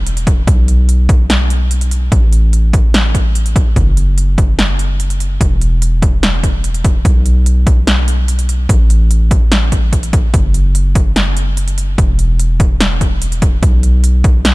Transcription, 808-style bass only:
0, 0, Header, 1, 2, 480
1, 0, Start_track
1, 0, Tempo, 410959
1, 556, Time_signature, 4, 2, 24, 8
1, 16987, End_track
2, 0, Start_track
2, 0, Title_t, "808-style bass"
2, 0, Program_c, 0, 38
2, 0, Note_on_c, 0, 28, 90
2, 532, Note_off_c, 0, 28, 0
2, 554, Note_on_c, 0, 35, 91
2, 2451, Note_off_c, 0, 35, 0
2, 2475, Note_on_c, 0, 33, 87
2, 4371, Note_off_c, 0, 33, 0
2, 4395, Note_on_c, 0, 30, 90
2, 6292, Note_off_c, 0, 30, 0
2, 6315, Note_on_c, 0, 28, 93
2, 8212, Note_off_c, 0, 28, 0
2, 8234, Note_on_c, 0, 35, 89
2, 10131, Note_off_c, 0, 35, 0
2, 10154, Note_on_c, 0, 33, 94
2, 12051, Note_off_c, 0, 33, 0
2, 12075, Note_on_c, 0, 30, 93
2, 13971, Note_off_c, 0, 30, 0
2, 13995, Note_on_c, 0, 28, 90
2, 15892, Note_off_c, 0, 28, 0
2, 15916, Note_on_c, 0, 35, 93
2, 16987, Note_off_c, 0, 35, 0
2, 16987, End_track
0, 0, End_of_file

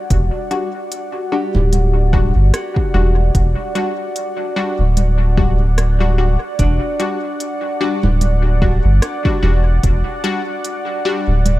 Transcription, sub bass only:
0, 0, Header, 1, 2, 480
1, 0, Start_track
1, 0, Key_signature, 1, "minor"
1, 0, Tempo, 810811
1, 62, Time_signature, 4, 2, 24, 8
1, 6864, End_track
2, 0, Start_track
2, 0, Title_t, "Sub bass"
2, 0, Program_c, 0, 38
2, 61, Note_on_c, 0, 28, 103
2, 180, Note_off_c, 0, 28, 0
2, 916, Note_on_c, 0, 26, 88
2, 1370, Note_off_c, 0, 26, 0
2, 1395, Note_on_c, 0, 31, 89
2, 1489, Note_off_c, 0, 31, 0
2, 1741, Note_on_c, 0, 28, 85
2, 1956, Note_off_c, 0, 28, 0
2, 1982, Note_on_c, 0, 28, 98
2, 2100, Note_off_c, 0, 28, 0
2, 2836, Note_on_c, 0, 26, 90
2, 3770, Note_off_c, 0, 26, 0
2, 3902, Note_on_c, 0, 28, 102
2, 4020, Note_off_c, 0, 28, 0
2, 4756, Note_on_c, 0, 26, 90
2, 5210, Note_off_c, 0, 26, 0
2, 5237, Note_on_c, 0, 31, 92
2, 5329, Note_off_c, 0, 31, 0
2, 5582, Note_on_c, 0, 28, 86
2, 5797, Note_off_c, 0, 28, 0
2, 5822, Note_on_c, 0, 28, 104
2, 5940, Note_off_c, 0, 28, 0
2, 6675, Note_on_c, 0, 26, 92
2, 6864, Note_off_c, 0, 26, 0
2, 6864, End_track
0, 0, End_of_file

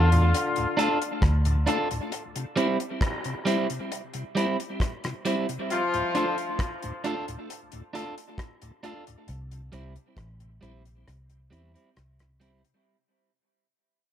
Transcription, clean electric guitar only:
0, 0, Header, 1, 2, 480
1, 0, Start_track
1, 0, Tempo, 894188
1, 1140, Time_signature, 4, 2, 24, 8
1, 7583, End_track
2, 0, Start_track
2, 0, Title_t, "Clean electric guitar"
2, 0, Program_c, 0, 27
2, 414, Note_on_c, 0, 62, 82
2, 419, Note_on_c, 0, 65, 83
2, 424, Note_on_c, 0, 69, 89
2, 523, Note_off_c, 0, 62, 0
2, 526, Note_off_c, 0, 65, 0
2, 528, Note_off_c, 0, 69, 0
2, 894, Note_on_c, 0, 62, 86
2, 899, Note_on_c, 0, 65, 92
2, 903, Note_on_c, 0, 69, 105
2, 1003, Note_off_c, 0, 62, 0
2, 1006, Note_off_c, 0, 65, 0
2, 1008, Note_off_c, 0, 69, 0
2, 1375, Note_on_c, 0, 55, 78
2, 1379, Note_on_c, 0, 60, 88
2, 1384, Note_on_c, 0, 64, 91
2, 1484, Note_off_c, 0, 55, 0
2, 1486, Note_off_c, 0, 60, 0
2, 1488, Note_off_c, 0, 64, 0
2, 1854, Note_on_c, 0, 55, 97
2, 1860, Note_on_c, 0, 60, 99
2, 1864, Note_on_c, 0, 64, 112
2, 1963, Note_off_c, 0, 55, 0
2, 1966, Note_off_c, 0, 60, 0
2, 1968, Note_off_c, 0, 64, 0
2, 2336, Note_on_c, 0, 55, 77
2, 2343, Note_on_c, 0, 60, 85
2, 2347, Note_on_c, 0, 64, 82
2, 2444, Note_off_c, 0, 55, 0
2, 2448, Note_off_c, 0, 60, 0
2, 2450, Note_off_c, 0, 64, 0
2, 2820, Note_on_c, 0, 55, 79
2, 2825, Note_on_c, 0, 60, 89
2, 2830, Note_on_c, 0, 64, 86
2, 2926, Note_off_c, 0, 55, 0
2, 2929, Note_off_c, 0, 60, 0
2, 2931, Note_off_c, 0, 64, 0
2, 3300, Note_on_c, 0, 62, 78
2, 3306, Note_on_c, 0, 65, 89
2, 3312, Note_on_c, 0, 69, 84
2, 3406, Note_off_c, 0, 62, 0
2, 3409, Note_off_c, 0, 65, 0
2, 3412, Note_off_c, 0, 69, 0
2, 3780, Note_on_c, 0, 62, 82
2, 3785, Note_on_c, 0, 65, 88
2, 3790, Note_on_c, 0, 69, 96
2, 3886, Note_off_c, 0, 62, 0
2, 3889, Note_off_c, 0, 65, 0
2, 3891, Note_off_c, 0, 69, 0
2, 4259, Note_on_c, 0, 62, 71
2, 4264, Note_on_c, 0, 65, 89
2, 4269, Note_on_c, 0, 69, 97
2, 4366, Note_off_c, 0, 62, 0
2, 4368, Note_off_c, 0, 65, 0
2, 4371, Note_off_c, 0, 69, 0
2, 4741, Note_on_c, 0, 62, 83
2, 4746, Note_on_c, 0, 65, 88
2, 4752, Note_on_c, 0, 69, 93
2, 4847, Note_off_c, 0, 62, 0
2, 4849, Note_off_c, 0, 65, 0
2, 4852, Note_off_c, 0, 69, 0
2, 5219, Note_on_c, 0, 55, 93
2, 5224, Note_on_c, 0, 60, 95
2, 5230, Note_on_c, 0, 64, 96
2, 5326, Note_off_c, 0, 55, 0
2, 5328, Note_off_c, 0, 60, 0
2, 5331, Note_off_c, 0, 64, 0
2, 5696, Note_on_c, 0, 55, 77
2, 5703, Note_on_c, 0, 60, 85
2, 5706, Note_on_c, 0, 64, 90
2, 5804, Note_off_c, 0, 55, 0
2, 5808, Note_off_c, 0, 60, 0
2, 5810, Note_off_c, 0, 64, 0
2, 6176, Note_on_c, 0, 55, 76
2, 6181, Note_on_c, 0, 60, 84
2, 6187, Note_on_c, 0, 64, 88
2, 6285, Note_off_c, 0, 55, 0
2, 6287, Note_off_c, 0, 60, 0
2, 6290, Note_off_c, 0, 64, 0
2, 6303, Note_on_c, 0, 64, 61
2, 6308, Note_on_c, 0, 60, 63
2, 6314, Note_on_c, 0, 55, 51
2, 6380, Note_off_c, 0, 64, 0
2, 6383, Note_off_c, 0, 60, 0
2, 6386, Note_off_c, 0, 55, 0
2, 6657, Note_on_c, 0, 55, 88
2, 6663, Note_on_c, 0, 60, 83
2, 6668, Note_on_c, 0, 64, 89
2, 6765, Note_off_c, 0, 55, 0
2, 6768, Note_off_c, 0, 60, 0
2, 6771, Note_off_c, 0, 64, 0
2, 7583, End_track
0, 0, End_of_file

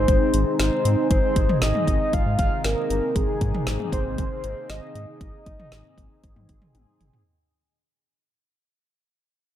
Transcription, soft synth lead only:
0, 0, Header, 1, 2, 480
1, 0, Start_track
1, 0, Tempo, 512821
1, 1035, Time_signature, 4, 2, 24, 8
1, 8942, End_track
2, 0, Start_track
2, 0, Title_t, "Soft synth lead"
2, 0, Program_c, 0, 80
2, 0, Note_on_c, 0, 72, 110
2, 520, Note_off_c, 0, 72, 0
2, 559, Note_on_c, 0, 72, 96
2, 1004, Note_off_c, 0, 72, 0
2, 1036, Note_on_c, 0, 72, 103
2, 1482, Note_off_c, 0, 72, 0
2, 1519, Note_on_c, 0, 75, 102
2, 1998, Note_on_c, 0, 77, 111
2, 2012, Note_off_c, 0, 75, 0
2, 2230, Note_off_c, 0, 77, 0
2, 2236, Note_on_c, 0, 77, 105
2, 2459, Note_off_c, 0, 77, 0
2, 2474, Note_on_c, 0, 70, 98
2, 2954, Note_on_c, 0, 68, 99
2, 2969, Note_off_c, 0, 70, 0
2, 3669, Note_off_c, 0, 68, 0
2, 3675, Note_on_c, 0, 72, 112
2, 4395, Note_on_c, 0, 75, 102
2, 4409, Note_off_c, 0, 72, 0
2, 4870, Note_off_c, 0, 75, 0
2, 4876, Note_on_c, 0, 75, 101
2, 6278, Note_off_c, 0, 75, 0
2, 8942, End_track
0, 0, End_of_file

